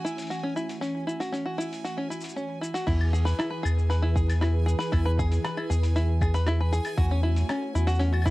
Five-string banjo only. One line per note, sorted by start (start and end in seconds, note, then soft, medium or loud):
0.05 0.30 E4 medium
0.30 0.43 F#4 medium
0.43 0.56 C#4 medium
0.56 0.81 E4 medium
0.81 1.06 C#4 medium
1.07 1.19 E4 medium
1.20 1.33 F#4 medium
1.33 1.45 C#4 medium
1.46 1.58 F#4 medium
1.58 1.83 E4 medium
1.84 1.97 F#4 medium
1.98 2.10 C#4 medium
2.10 2.35 E4 medium
2.36 2.61 C#4 medium
2.61 2.73 E4 medium
2.74 2.87 F#4 medium
2.87 3.12 E4 medium
3.13 3.25 G#4 medium
3.25 3.38 B4 medium
3.39 3.50 E4 loud
3.50 3.63 B4 medium
3.63 3.88 G#4 loud
3.90 4.02 B4 medium
4.02 4.15 E4 medium
4.16 4.40 G#4 medium
4.41 4.66 E4 medium
4.66 4.78 G#4 medium
4.79 4.92 B4 loud
4.92 5.04 E4 loud
5.05 5.17 B4 medium
5.19 5.43 G#4 loud
5.44 5.56 B4 medium
5.57 5.69 E4 medium
5.70 5.94 G#4 medium
5.96 6.20 E4 medium
6.22 6.33 G#4 medium
6.34 6.46 B4 loud
6.47 6.59 E4 loud
6.61 6.72 B4 medium
6.73 6.97 G#4 loud
6.97 7.10 F#4 medium
7.11 7.23 C#4 medium
7.23 7.48 E4 medium
7.50 7.74 C#4 medium
7.75 7.87 E4 medium
7.87 8.00 F#4 loud
7.99 8.11 C#4 loud
8.13 8.24 F#4 medium
8.26 8.30 E4 loud